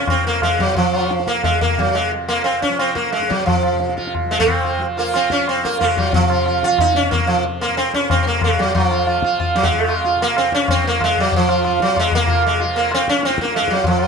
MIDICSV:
0, 0, Header, 1, 4, 480
1, 0, Start_track
1, 0, Tempo, 338792
1, 1085, Time_signature, 4, 2, 24, 8
1, 4917, Tempo, 331675
1, 10197, Tempo, 324149
1, 15477, Tempo, 316957
1, 20610, End_track
2, 0, Start_track
2, 0, Title_t, "Sitar"
2, 0, Program_c, 0, 104
2, 142, Note_on_c, 0, 60, 81
2, 374, Note_off_c, 0, 60, 0
2, 380, Note_on_c, 0, 58, 80
2, 605, Note_off_c, 0, 58, 0
2, 611, Note_on_c, 0, 56, 80
2, 850, Note_on_c, 0, 54, 76
2, 855, Note_off_c, 0, 56, 0
2, 1078, Note_off_c, 0, 54, 0
2, 1083, Note_on_c, 0, 53, 77
2, 1339, Note_on_c, 0, 65, 34
2, 1558, Note_off_c, 0, 65, 0
2, 1807, Note_on_c, 0, 58, 78
2, 1829, Note_off_c, 0, 53, 0
2, 2037, Note_off_c, 0, 58, 0
2, 2043, Note_on_c, 0, 56, 79
2, 2269, Note_off_c, 0, 56, 0
2, 2284, Note_on_c, 0, 58, 79
2, 2534, Note_off_c, 0, 58, 0
2, 2534, Note_on_c, 0, 54, 75
2, 2761, Note_on_c, 0, 56, 73
2, 2779, Note_off_c, 0, 54, 0
2, 2988, Note_off_c, 0, 56, 0
2, 3238, Note_on_c, 0, 58, 83
2, 3452, Note_off_c, 0, 58, 0
2, 3458, Note_on_c, 0, 60, 82
2, 3710, Note_off_c, 0, 60, 0
2, 3716, Note_on_c, 0, 61, 84
2, 3952, Note_off_c, 0, 61, 0
2, 3958, Note_on_c, 0, 60, 85
2, 4175, Note_off_c, 0, 60, 0
2, 4181, Note_on_c, 0, 58, 76
2, 4422, Note_off_c, 0, 58, 0
2, 4428, Note_on_c, 0, 56, 75
2, 4674, Note_on_c, 0, 54, 71
2, 4680, Note_off_c, 0, 56, 0
2, 4893, Note_off_c, 0, 54, 0
2, 4898, Note_on_c, 0, 53, 70
2, 5583, Note_off_c, 0, 53, 0
2, 5636, Note_on_c, 0, 65, 36
2, 5865, Note_off_c, 0, 65, 0
2, 6132, Note_on_c, 0, 56, 79
2, 6242, Note_off_c, 0, 56, 0
2, 6260, Note_on_c, 0, 60, 95
2, 6616, Note_on_c, 0, 65, 36
2, 6837, Note_off_c, 0, 65, 0
2, 6927, Note_off_c, 0, 60, 0
2, 7089, Note_on_c, 0, 65, 38
2, 7113, Note_on_c, 0, 58, 79
2, 7309, Note_off_c, 0, 65, 0
2, 7326, Note_on_c, 0, 65, 37
2, 7350, Note_off_c, 0, 58, 0
2, 7356, Note_on_c, 0, 60, 85
2, 7545, Note_off_c, 0, 65, 0
2, 7563, Note_on_c, 0, 65, 39
2, 7587, Note_off_c, 0, 60, 0
2, 7593, Note_on_c, 0, 61, 93
2, 7790, Note_off_c, 0, 65, 0
2, 7829, Note_off_c, 0, 61, 0
2, 7838, Note_on_c, 0, 60, 90
2, 8042, Note_on_c, 0, 65, 36
2, 8071, Note_off_c, 0, 60, 0
2, 8071, Note_on_c, 0, 58, 80
2, 8265, Note_off_c, 0, 65, 0
2, 8276, Note_off_c, 0, 58, 0
2, 8282, Note_on_c, 0, 65, 36
2, 8304, Note_on_c, 0, 56, 80
2, 8508, Note_off_c, 0, 65, 0
2, 8527, Note_on_c, 0, 65, 38
2, 8543, Note_off_c, 0, 56, 0
2, 8543, Note_on_c, 0, 54, 75
2, 8750, Note_off_c, 0, 65, 0
2, 8777, Note_off_c, 0, 54, 0
2, 8782, Note_on_c, 0, 53, 93
2, 9029, Note_on_c, 0, 65, 39
2, 9241, Note_off_c, 0, 65, 0
2, 9262, Note_on_c, 0, 65, 39
2, 9476, Note_off_c, 0, 65, 0
2, 9505, Note_on_c, 0, 65, 104
2, 9512, Note_off_c, 0, 53, 0
2, 9738, Note_off_c, 0, 65, 0
2, 9744, Note_on_c, 0, 63, 103
2, 9969, Note_on_c, 0, 61, 96
2, 9977, Note_off_c, 0, 63, 0
2, 10181, Note_off_c, 0, 61, 0
2, 10186, Note_on_c, 0, 58, 88
2, 10425, Note_on_c, 0, 53, 84
2, 10441, Note_off_c, 0, 58, 0
2, 10657, Note_off_c, 0, 53, 0
2, 10929, Note_on_c, 0, 58, 86
2, 11158, Note_off_c, 0, 58, 0
2, 11164, Note_on_c, 0, 60, 88
2, 11413, Note_off_c, 0, 60, 0
2, 11419, Note_on_c, 0, 61, 95
2, 11657, Note_off_c, 0, 61, 0
2, 11663, Note_on_c, 0, 60, 87
2, 11819, Note_off_c, 0, 60, 0
2, 11837, Note_on_c, 0, 60, 70
2, 11894, Note_off_c, 0, 60, 0
2, 11903, Note_on_c, 0, 58, 83
2, 12121, Note_off_c, 0, 58, 0
2, 12153, Note_on_c, 0, 56, 79
2, 12376, Note_on_c, 0, 54, 80
2, 12390, Note_off_c, 0, 56, 0
2, 12601, Note_off_c, 0, 54, 0
2, 12607, Note_on_c, 0, 53, 74
2, 12854, Note_on_c, 0, 65, 38
2, 13070, Note_off_c, 0, 65, 0
2, 13088, Note_on_c, 0, 65, 39
2, 13278, Note_off_c, 0, 53, 0
2, 13313, Note_off_c, 0, 65, 0
2, 13341, Note_on_c, 0, 65, 41
2, 13548, Note_off_c, 0, 65, 0
2, 13566, Note_on_c, 0, 65, 40
2, 13791, Note_off_c, 0, 65, 0
2, 13807, Note_on_c, 0, 54, 90
2, 13920, Note_on_c, 0, 56, 88
2, 13932, Note_off_c, 0, 54, 0
2, 14277, Note_on_c, 0, 65, 40
2, 14504, Note_off_c, 0, 65, 0
2, 14531, Note_on_c, 0, 65, 42
2, 14590, Note_off_c, 0, 56, 0
2, 14750, Note_off_c, 0, 65, 0
2, 14793, Note_on_c, 0, 58, 100
2, 15018, Note_off_c, 0, 58, 0
2, 15024, Note_on_c, 0, 60, 98
2, 15258, Note_off_c, 0, 60, 0
2, 15271, Note_on_c, 0, 61, 103
2, 15500, Note_off_c, 0, 61, 0
2, 15509, Note_on_c, 0, 60, 98
2, 15743, Note_off_c, 0, 60, 0
2, 15763, Note_on_c, 0, 58, 90
2, 15990, Note_off_c, 0, 58, 0
2, 16014, Note_on_c, 0, 56, 88
2, 16236, Note_off_c, 0, 56, 0
2, 16263, Note_on_c, 0, 54, 88
2, 16482, Note_off_c, 0, 54, 0
2, 16504, Note_on_c, 0, 53, 90
2, 16689, Note_on_c, 0, 65, 38
2, 16906, Note_off_c, 0, 65, 0
2, 16924, Note_on_c, 0, 65, 40
2, 17150, Note_off_c, 0, 65, 0
2, 17192, Note_off_c, 0, 53, 0
2, 17198, Note_on_c, 0, 54, 88
2, 17431, Note_off_c, 0, 54, 0
2, 17461, Note_on_c, 0, 56, 97
2, 17683, Note_off_c, 0, 56, 0
2, 17697, Note_on_c, 0, 58, 97
2, 17884, Note_on_c, 0, 65, 39
2, 18110, Note_off_c, 0, 65, 0
2, 18168, Note_off_c, 0, 58, 0
2, 18175, Note_on_c, 0, 56, 85
2, 18373, Note_on_c, 0, 65, 43
2, 18377, Note_off_c, 0, 56, 0
2, 18595, Note_off_c, 0, 65, 0
2, 18621, Note_on_c, 0, 58, 88
2, 18862, Note_off_c, 0, 58, 0
2, 18900, Note_on_c, 0, 60, 102
2, 19119, Note_off_c, 0, 60, 0
2, 19125, Note_on_c, 0, 61, 96
2, 19352, Note_off_c, 0, 61, 0
2, 19365, Note_on_c, 0, 60, 98
2, 19591, Note_off_c, 0, 60, 0
2, 19606, Note_on_c, 0, 58, 82
2, 19827, Note_off_c, 0, 58, 0
2, 19833, Note_on_c, 0, 56, 85
2, 20053, Note_on_c, 0, 54, 76
2, 20063, Note_off_c, 0, 56, 0
2, 20290, Note_off_c, 0, 54, 0
2, 20296, Note_on_c, 0, 53, 79
2, 20610, Note_off_c, 0, 53, 0
2, 20610, End_track
3, 0, Start_track
3, 0, Title_t, "Tanpura"
3, 0, Program_c, 1, 104
3, 0, Note_on_c, 1, 41, 53
3, 0, Note_on_c, 1, 48, 53
3, 0, Note_on_c, 1, 53, 61
3, 111, Note_off_c, 1, 53, 0
3, 111, Note_on_c, 1, 53, 54
3, 845, Note_off_c, 1, 53, 0
3, 845, Note_on_c, 1, 53, 53
3, 1572, Note_off_c, 1, 41, 0
3, 1577, Note_on_c, 1, 41, 57
3, 2340, Note_off_c, 1, 48, 0
3, 2346, Note_on_c, 1, 48, 58
3, 3046, Note_off_c, 1, 53, 0
3, 3046, Note_on_c, 1, 53, 58
3, 3812, Note_off_c, 1, 53, 0
3, 3812, Note_on_c, 1, 53, 56
3, 4512, Note_off_c, 1, 41, 0
3, 4517, Note_on_c, 1, 41, 58
3, 5285, Note_off_c, 1, 48, 0
3, 5291, Note_on_c, 1, 48, 64
3, 6041, Note_off_c, 1, 53, 0
3, 6041, Note_on_c, 1, 53, 60
3, 6816, Note_off_c, 1, 53, 0
3, 6816, Note_on_c, 1, 53, 58
3, 7544, Note_off_c, 1, 41, 0
3, 7550, Note_on_c, 1, 41, 60
3, 8281, Note_off_c, 1, 48, 0
3, 8287, Note_on_c, 1, 48, 62
3, 8780, Note_off_c, 1, 48, 0
3, 8780, Note_on_c, 1, 48, 64
3, 9537, Note_off_c, 1, 53, 0
3, 9537, Note_on_c, 1, 53, 63
3, 10287, Note_off_c, 1, 53, 0
3, 10287, Note_on_c, 1, 53, 56
3, 11006, Note_off_c, 1, 41, 0
3, 11012, Note_on_c, 1, 41, 63
3, 11734, Note_off_c, 1, 48, 0
3, 11734, Note_on_c, 1, 48, 67
3, 12490, Note_off_c, 1, 53, 0
3, 12490, Note_on_c, 1, 53, 64
3, 13245, Note_off_c, 1, 53, 0
3, 13245, Note_on_c, 1, 53, 68
3, 13950, Note_off_c, 1, 41, 0
3, 13956, Note_on_c, 1, 41, 67
3, 14693, Note_off_c, 1, 48, 0
3, 14699, Note_on_c, 1, 48, 59
3, 15472, Note_off_c, 1, 53, 0
3, 15472, Note_on_c, 1, 53, 67
3, 16227, Note_off_c, 1, 53, 0
3, 16227, Note_on_c, 1, 53, 65
3, 16963, Note_off_c, 1, 41, 0
3, 16969, Note_on_c, 1, 41, 65
3, 17678, Note_off_c, 1, 48, 0
3, 17684, Note_on_c, 1, 48, 63
3, 18439, Note_off_c, 1, 53, 0
3, 18439, Note_on_c, 1, 53, 66
3, 19159, Note_off_c, 1, 53, 0
3, 19159, Note_on_c, 1, 53, 63
3, 19901, Note_off_c, 1, 41, 0
3, 19907, Note_on_c, 1, 41, 67
3, 20610, Note_off_c, 1, 41, 0
3, 20610, Note_off_c, 1, 48, 0
3, 20610, Note_off_c, 1, 53, 0
3, 20610, End_track
4, 0, Start_track
4, 0, Title_t, "Tabla"
4, 105, Note_on_c, 9, 60, 73
4, 105, Note_on_c, 9, 64, 66
4, 247, Note_off_c, 9, 60, 0
4, 247, Note_off_c, 9, 64, 0
4, 346, Note_on_c, 9, 62, 55
4, 487, Note_off_c, 9, 62, 0
4, 596, Note_on_c, 9, 60, 74
4, 596, Note_on_c, 9, 64, 65
4, 737, Note_off_c, 9, 60, 0
4, 737, Note_off_c, 9, 64, 0
4, 839, Note_on_c, 9, 64, 50
4, 981, Note_off_c, 9, 64, 0
4, 1070, Note_on_c, 9, 63, 96
4, 1070, Note_on_c, 9, 64, 86
4, 1212, Note_off_c, 9, 63, 0
4, 1212, Note_off_c, 9, 64, 0
4, 1325, Note_on_c, 9, 60, 75
4, 1466, Note_off_c, 9, 60, 0
4, 1568, Note_on_c, 9, 62, 81
4, 1696, Note_off_c, 9, 62, 0
4, 1696, Note_on_c, 9, 62, 61
4, 1801, Note_on_c, 9, 37, 56
4, 1837, Note_off_c, 9, 62, 0
4, 1914, Note_on_c, 9, 62, 54
4, 1942, Note_off_c, 9, 37, 0
4, 2036, Note_on_c, 9, 60, 69
4, 2036, Note_on_c, 9, 64, 64
4, 2056, Note_off_c, 9, 62, 0
4, 2177, Note_off_c, 9, 60, 0
4, 2177, Note_off_c, 9, 64, 0
4, 2289, Note_on_c, 9, 64, 51
4, 2431, Note_off_c, 9, 64, 0
4, 2531, Note_on_c, 9, 63, 74
4, 2531, Note_on_c, 9, 64, 66
4, 2673, Note_off_c, 9, 63, 0
4, 2673, Note_off_c, 9, 64, 0
4, 2762, Note_on_c, 9, 60, 51
4, 2904, Note_off_c, 9, 60, 0
4, 3004, Note_on_c, 9, 63, 80
4, 3146, Note_off_c, 9, 63, 0
4, 3240, Note_on_c, 9, 60, 58
4, 3382, Note_off_c, 9, 60, 0
4, 3480, Note_on_c, 9, 60, 76
4, 3621, Note_off_c, 9, 60, 0
4, 3721, Note_on_c, 9, 37, 53
4, 3862, Note_off_c, 9, 37, 0
4, 3956, Note_on_c, 9, 60, 69
4, 4098, Note_off_c, 9, 60, 0
4, 4191, Note_on_c, 9, 37, 61
4, 4332, Note_off_c, 9, 37, 0
4, 4431, Note_on_c, 9, 62, 69
4, 4568, Note_off_c, 9, 62, 0
4, 4568, Note_on_c, 9, 62, 55
4, 4686, Note_on_c, 9, 37, 55
4, 4710, Note_off_c, 9, 62, 0
4, 4805, Note_on_c, 9, 62, 56
4, 4828, Note_off_c, 9, 37, 0
4, 4920, Note_on_c, 9, 63, 103
4, 4920, Note_on_c, 9, 64, 92
4, 4948, Note_off_c, 9, 62, 0
4, 5065, Note_off_c, 9, 63, 0
4, 5065, Note_off_c, 9, 64, 0
4, 5150, Note_on_c, 9, 60, 86
4, 5294, Note_off_c, 9, 60, 0
4, 5393, Note_on_c, 9, 62, 77
4, 5527, Note_off_c, 9, 62, 0
4, 5527, Note_on_c, 9, 62, 59
4, 5652, Note_on_c, 9, 37, 53
4, 5672, Note_off_c, 9, 62, 0
4, 5787, Note_on_c, 9, 62, 58
4, 5796, Note_off_c, 9, 37, 0
4, 5897, Note_on_c, 9, 60, 73
4, 5897, Note_on_c, 9, 64, 67
4, 5932, Note_off_c, 9, 62, 0
4, 6041, Note_off_c, 9, 60, 0
4, 6041, Note_off_c, 9, 64, 0
4, 6144, Note_on_c, 9, 62, 60
4, 6262, Note_on_c, 9, 64, 52
4, 6289, Note_off_c, 9, 62, 0
4, 6372, Note_off_c, 9, 64, 0
4, 6372, Note_on_c, 9, 63, 78
4, 6372, Note_on_c, 9, 64, 68
4, 6516, Note_off_c, 9, 63, 0
4, 6516, Note_off_c, 9, 64, 0
4, 6617, Note_on_c, 9, 60, 55
4, 6762, Note_off_c, 9, 60, 0
4, 6860, Note_on_c, 9, 63, 77
4, 7005, Note_off_c, 9, 63, 0
4, 7100, Note_on_c, 9, 60, 57
4, 7245, Note_off_c, 9, 60, 0
4, 7332, Note_on_c, 9, 60, 76
4, 7477, Note_off_c, 9, 60, 0
4, 7566, Note_on_c, 9, 37, 55
4, 7711, Note_off_c, 9, 37, 0
4, 7821, Note_on_c, 9, 60, 73
4, 7965, Note_off_c, 9, 60, 0
4, 8070, Note_on_c, 9, 37, 61
4, 8215, Note_off_c, 9, 37, 0
4, 8302, Note_on_c, 9, 60, 77
4, 8302, Note_on_c, 9, 64, 68
4, 8447, Note_off_c, 9, 60, 0
4, 8447, Note_off_c, 9, 64, 0
4, 8537, Note_on_c, 9, 64, 50
4, 8682, Note_off_c, 9, 64, 0
4, 8767, Note_on_c, 9, 63, 107
4, 8767, Note_on_c, 9, 64, 94
4, 8912, Note_off_c, 9, 63, 0
4, 8912, Note_off_c, 9, 64, 0
4, 9009, Note_on_c, 9, 60, 92
4, 9154, Note_off_c, 9, 60, 0
4, 9242, Note_on_c, 9, 60, 78
4, 9387, Note_off_c, 9, 60, 0
4, 9491, Note_on_c, 9, 37, 62
4, 9636, Note_off_c, 9, 37, 0
4, 9713, Note_on_c, 9, 60, 81
4, 9713, Note_on_c, 9, 64, 73
4, 9858, Note_off_c, 9, 60, 0
4, 9858, Note_off_c, 9, 64, 0
4, 9950, Note_on_c, 9, 62, 64
4, 10067, Note_on_c, 9, 64, 58
4, 10095, Note_off_c, 9, 62, 0
4, 10197, Note_off_c, 9, 64, 0
4, 10197, Note_on_c, 9, 63, 79
4, 10197, Note_on_c, 9, 64, 74
4, 10345, Note_off_c, 9, 63, 0
4, 10345, Note_off_c, 9, 64, 0
4, 10426, Note_on_c, 9, 60, 60
4, 10575, Note_off_c, 9, 60, 0
4, 10691, Note_on_c, 9, 63, 85
4, 10839, Note_off_c, 9, 63, 0
4, 10937, Note_on_c, 9, 60, 62
4, 11085, Note_off_c, 9, 60, 0
4, 11175, Note_on_c, 9, 60, 80
4, 11323, Note_off_c, 9, 60, 0
4, 11411, Note_on_c, 9, 37, 59
4, 11559, Note_off_c, 9, 37, 0
4, 11649, Note_on_c, 9, 60, 77
4, 11649, Note_on_c, 9, 64, 79
4, 11797, Note_off_c, 9, 60, 0
4, 11797, Note_off_c, 9, 64, 0
4, 11883, Note_on_c, 9, 62, 67
4, 12031, Note_off_c, 9, 62, 0
4, 12117, Note_on_c, 9, 60, 79
4, 12117, Note_on_c, 9, 64, 79
4, 12265, Note_off_c, 9, 60, 0
4, 12265, Note_off_c, 9, 64, 0
4, 12369, Note_on_c, 9, 64, 53
4, 12517, Note_off_c, 9, 64, 0
4, 12613, Note_on_c, 9, 63, 106
4, 12613, Note_on_c, 9, 64, 93
4, 12761, Note_off_c, 9, 63, 0
4, 12761, Note_off_c, 9, 64, 0
4, 12849, Note_on_c, 9, 60, 88
4, 12997, Note_off_c, 9, 60, 0
4, 13084, Note_on_c, 9, 60, 86
4, 13232, Note_off_c, 9, 60, 0
4, 13315, Note_on_c, 9, 37, 65
4, 13463, Note_off_c, 9, 37, 0
4, 13574, Note_on_c, 9, 60, 88
4, 13574, Note_on_c, 9, 64, 73
4, 13722, Note_off_c, 9, 60, 0
4, 13722, Note_off_c, 9, 64, 0
4, 13804, Note_on_c, 9, 62, 62
4, 13921, Note_on_c, 9, 64, 57
4, 13952, Note_off_c, 9, 62, 0
4, 14051, Note_off_c, 9, 64, 0
4, 14051, Note_on_c, 9, 63, 79
4, 14051, Note_on_c, 9, 64, 69
4, 14199, Note_off_c, 9, 63, 0
4, 14199, Note_off_c, 9, 64, 0
4, 14294, Note_on_c, 9, 60, 59
4, 14442, Note_off_c, 9, 60, 0
4, 14533, Note_on_c, 9, 63, 89
4, 14682, Note_off_c, 9, 63, 0
4, 14775, Note_on_c, 9, 60, 70
4, 14923, Note_off_c, 9, 60, 0
4, 15005, Note_on_c, 9, 60, 89
4, 15153, Note_off_c, 9, 60, 0
4, 15238, Note_on_c, 9, 37, 67
4, 15387, Note_off_c, 9, 37, 0
4, 15473, Note_on_c, 9, 60, 80
4, 15473, Note_on_c, 9, 64, 73
4, 15624, Note_off_c, 9, 60, 0
4, 15624, Note_off_c, 9, 64, 0
4, 15719, Note_on_c, 9, 62, 63
4, 15870, Note_off_c, 9, 62, 0
4, 15966, Note_on_c, 9, 60, 80
4, 15966, Note_on_c, 9, 64, 82
4, 16117, Note_off_c, 9, 60, 0
4, 16117, Note_off_c, 9, 64, 0
4, 16210, Note_on_c, 9, 64, 52
4, 16361, Note_off_c, 9, 64, 0
4, 16442, Note_on_c, 9, 63, 114
4, 16442, Note_on_c, 9, 64, 94
4, 16593, Note_off_c, 9, 63, 0
4, 16593, Note_off_c, 9, 64, 0
4, 16694, Note_on_c, 9, 60, 91
4, 16845, Note_off_c, 9, 60, 0
4, 16933, Note_on_c, 9, 60, 82
4, 17085, Note_off_c, 9, 60, 0
4, 17168, Note_on_c, 9, 37, 63
4, 17319, Note_off_c, 9, 37, 0
4, 17414, Note_on_c, 9, 60, 77
4, 17414, Note_on_c, 9, 64, 74
4, 17566, Note_off_c, 9, 60, 0
4, 17566, Note_off_c, 9, 64, 0
4, 17646, Note_on_c, 9, 64, 58
4, 17797, Note_off_c, 9, 64, 0
4, 17880, Note_on_c, 9, 63, 91
4, 17880, Note_on_c, 9, 64, 76
4, 18032, Note_off_c, 9, 63, 0
4, 18032, Note_off_c, 9, 64, 0
4, 18128, Note_on_c, 9, 60, 67
4, 18279, Note_off_c, 9, 60, 0
4, 18389, Note_on_c, 9, 63, 84
4, 18540, Note_off_c, 9, 63, 0
4, 18618, Note_on_c, 9, 60, 65
4, 18770, Note_off_c, 9, 60, 0
4, 18855, Note_on_c, 9, 60, 89
4, 19006, Note_off_c, 9, 60, 0
4, 19102, Note_on_c, 9, 37, 65
4, 19254, Note_off_c, 9, 37, 0
4, 19331, Note_on_c, 9, 62, 80
4, 19442, Note_off_c, 9, 62, 0
4, 19442, Note_on_c, 9, 62, 68
4, 19558, Note_on_c, 9, 37, 69
4, 19593, Note_off_c, 9, 62, 0
4, 19663, Note_on_c, 9, 62, 68
4, 19710, Note_off_c, 9, 37, 0
4, 19781, Note_off_c, 9, 62, 0
4, 19781, Note_on_c, 9, 62, 78
4, 19902, Note_off_c, 9, 62, 0
4, 19902, Note_on_c, 9, 62, 67
4, 20010, Note_on_c, 9, 37, 64
4, 20053, Note_off_c, 9, 62, 0
4, 20139, Note_on_c, 9, 62, 68
4, 20162, Note_off_c, 9, 37, 0
4, 20256, Note_on_c, 9, 63, 116
4, 20256, Note_on_c, 9, 64, 97
4, 20291, Note_off_c, 9, 62, 0
4, 20407, Note_off_c, 9, 63, 0
4, 20407, Note_off_c, 9, 64, 0
4, 20484, Note_on_c, 9, 60, 98
4, 20610, Note_off_c, 9, 60, 0
4, 20610, End_track
0, 0, End_of_file